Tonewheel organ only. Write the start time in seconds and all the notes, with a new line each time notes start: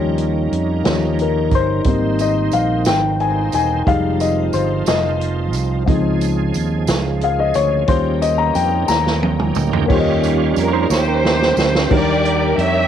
Already playing: G3 C#4 D#4 A#4
1.85 D#3 C4 D#4 C5
3.86 F3 C4 D#4 F4
5.87 C#3 D#3 G#3 G#4
5.93 F3
7.88 A#3 C#4 D#4 G4
9.88 G3 C#4 F4
11.91 D#3 G3 A#3 D4 F#4
11.98 G4